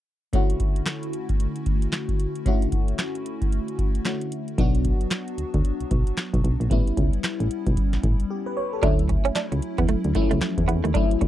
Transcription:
0.33 D3 A3 C#4 E4 F#4, kick, closed hi-hat
0.50 closed hi-hat
0.60 kick, closed hi-hat
0.76 closed hi-hat
0.86 snare, clap, closed hi-hat
1.03 closed hi-hat
1.13 closed hi-hat
1.29 kick, closed hi-hat
1.40 closed hi-hat
1.56 closed hi-hat
1.66 kick, closed hi-hat
1.82 closed hi-hat
1.92 snare, clap, closed hi-hat
2.09 kick, closed hi-hat
2.20 closed hi-hat
2.35 closed hi-hat
2.46 D3 A3 C#4 E4 F#4, kick, closed hi-hat
2.62 closed hi-hat
2.72 kick, closed hi-hat
2.88 closed hi-hat
2.99 snare, clap, closed hi-hat
3.15 closed hi-hat
3.26 closed hi-hat
3.42 kick, closed hi-hat
3.52 closed hi-hat
3.68 closed hi-hat
3.79 kick, closed hi-hat
3.95 closed hi-hat
4.05 D3 A3 C#4 E4 F#4, snare, clap, closed hi-hat
4.21 closed hi-hat
4.32 closed hi-hat
4.48 closed hi-hat
4.58 B1 F#3 B3 D4 F#4, kick, closed hi-hat
4.75 closed hi-hat
4.85 kick, closed hi-hat
5.01 closed hi-hat
5.11 snare, clap, closed hi-hat
5.28 closed hi-hat
5.38 D2, closed hi-hat
5.54 D2, kick, closed hi-hat
5.65 closed hi-hat
5.80 B1, closed hi-hat
5.91 B1, kick, closed hi-hat
6.07 closed hi-hat
6.17 snare, clap, closed hi-hat
6.34 B1, kick, closed hi-hat
6.44 B1, closed hi-hat
6.60 A#1, closed hi-hat
6.70 A1 G3 B3 C#4 E4, kick, closed hi-hat
6.87 closed hi-hat
6.97 C#2, kick, closed hi-hat
7.13 closed hi-hat
7.24 snare, clap, closed hi-hat
7.40 A1, closed hi-hat
7.51 closed hi-hat
7.67 B1, kick, closed hi-hat
7.77 kick, closed hi-hat
7.93 A1, snare, closed hi-hat
8.03 A1, kick, closed hi-hat
8.20 closed hi-hat
8.30 G4
8.46 B4
8.57 C#5
8.73 A4
8.82 D2 F#3 A3 C#4 D4 E4, kick, closed hi-hat
8.99 closed hi-hat
9.09 muted clean electric guitar stroke, kick, closed hi-hat
9.25 C#4, closed hi-hat
9.35 D4, snare, clap, closed hi-hat
9.52 C#2, muted clean electric guitar stroke, closed hi-hat
9.62 closed hi-hat
9.78 E2 B3, kick, closed hi-hat
9.88 D2 A3, closed hi-hat
10.04 D2, closed hi-hat
10.15 F3 A3 C#4 E4, muted clean electric guitar stroke, kick, closed hi-hat
10.22 F#3
10.31 C#2 A3, closed hi-hat
10.41 muted clean electric guitar stroke, snare, clap, closed hi-hat
10.58 E2, kick, closed hi-hat
10.68 E2 B3, closed hi-hat
10.84 D#2 A3, closed hi-hat
10.94 F#3 A3 C#4 D4 E4, kick, closed hi-hat
11.11 closed hi-hat
11.21 D2, muted clean electric guitar stroke, kick, closed hi-hat

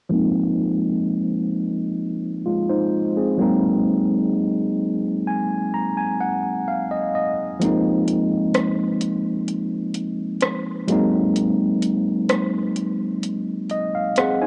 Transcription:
0.09 F3 G#3 A#3 C4
0.14 D#4
2.46 G#3 F4
2.69 D#4 C5
3.17 C4 G#4
3.38 F#3 G#3 A#3 C4
3.42 D#4
5.27 G#5
5.74 A#5
5.97 G#5
6.21 F#5
6.68 F5
6.91 D#5
7.15 D#5
7.59 F3 G#3 A#3 C4, closed hi-hat
7.64 D#4
8.08 closed hi-hat
8.54 cross-stick, closed hi-hat
9.01 closed hi-hat
9.48 closed hi-hat
9.94 closed hi-hat
10.41 cross-stick, closed hi-hat
10.88 F#3 G#3 A#3 C4, closed hi-hat
10.92 D#4
11.36 closed hi-hat
11.82 closed hi-hat
12.29 cross-stick, closed hi-hat
12.76 closed hi-hat
13.23 closed hi-hat
13.69 D#5, closed hi-hat
13.95 F5
14.16 C4 G#4 F#5, cross-stick, closed hi-hat
14.41 D#4 C5 G#5

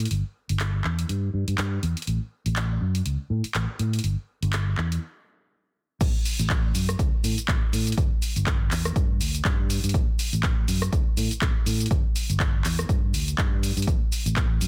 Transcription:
0.00 closed hi-hat
0.05 closed hi-hat
0.11 G1, closed hi-hat
0.49 G1, closed hi-hat
0.60 clap, closed hi-hat
0.84 E2, clap
0.99 closed hi-hat
1.09 G2, closed hi-hat
1.34 G2
1.48 G2, closed hi-hat
1.58 G2, clap, closed hi-hat
1.83 E2, closed hi-hat
1.97 closed hi-hat
2.02 closed hi-hat
2.07 A1, closed hi-hat
2.46 A1, closed hi-hat
2.56 clap, closed hi-hat
2.81 F#2
2.95 closed hi-hat
3.06 C#2, closed hi-hat
3.30 A2
3.44 muted fingered electric bass stroke, closed hi-hat
3.55 A1, clap, closed hi-hat
3.79 A2, closed hi-hat
3.93 closed hi-hat
3.99 closed hi-hat
4.04 G1, closed hi-hat
4.42 G1, closed hi-hat
4.53 clap, closed hi-hat
4.78 E2, clap
4.92 closed hi-hat
6.01 A1, kick, closed hi-hat, crash, cabasa
6.25 open hi-hat, cabasa
6.39 A1, closed hi-hat, cabasa
6.50 kick, clap, closed hi-hat, cabasa
6.75 F#2, open hi-hat, cabasa
6.89 cross-stick, closed hi-hat, cabasa
6.99 C#2, kick, closed hi-hat, cabasa
7.24 A2, open hi-hat, cabasa
7.38 muted fingered electric bass stroke, closed hi-hat, cabasa
7.48 A1, kick, clap, closed hi-hat, cabasa
7.73 A2, open hi-hat, cabasa
7.87 closed hi-hat, cabasa
7.92 closed hi-hat
7.97 G1, kick, closed hi-hat, cabasa
8.22 open hi-hat, cabasa
8.36 G1, closed hi-hat, cabasa
8.47 kick, clap, closed hi-hat, cabasa
8.71 E2, clap, open hi-hat, cabasa
8.85 cross-stick, closed hi-hat, cabasa
8.96 G2, kick, closed hi-hat, cabasa
9.20 D2, open hi-hat, cabasa
9.35 closed hi-hat, cabasa
9.45 G2, kick, clap, closed hi-hat, cabasa
9.70 open hi-hat, cabasa
9.84 G2, closed hi-hat, cabasa
9.89 closed hi-hat
9.94 A1, kick, closed hi-hat, cabasa
10.19 open hi-hat, cabasa
10.33 A1, closed hi-hat, cabasa
10.43 kick, clap, closed hi-hat, cabasa
10.68 F#2, open hi-hat, cabasa
10.82 cross-stick, closed hi-hat, cabasa
10.93 C#2, kick, closed hi-hat, cabasa
11.17 A2, open hi-hat, cabasa
11.31 muted fingered electric bass stroke, closed hi-hat, cabasa
11.42 A1, kick, clap, closed hi-hat, cabasa
11.66 A2, open hi-hat, cabasa
11.80 closed hi-hat, cabasa
11.86 closed hi-hat
11.91 G1, kick, cabasa
12.16 open hi-hat, cabasa
12.29 G1, closed hi-hat, cabasa
12.40 kick, clap, closed hi-hat, cabasa
12.64 E2, clap, open hi-hat, cabasa
12.79 cross-stick, closed hi-hat, cabasa
12.89 G2, kick, closed hi-hat, cabasa
13.14 D2, open hi-hat, cabasa
13.28 closed hi-hat, cabasa
13.38 G2, kick, clap, closed hi-hat, cabasa
13.63 open hi-hat, cabasa
13.77 G2, closed hi-hat, cabasa
13.82 closed hi-hat
13.87 A1, kick, closed hi-hat, cabasa
14.12 open hi-hat, cabasa
14.26 A1, closed hi-hat, cabasa
14.36 kick, clap, closed hi-hat, cabasa
14.61 F#2, open hi-hat, cabasa

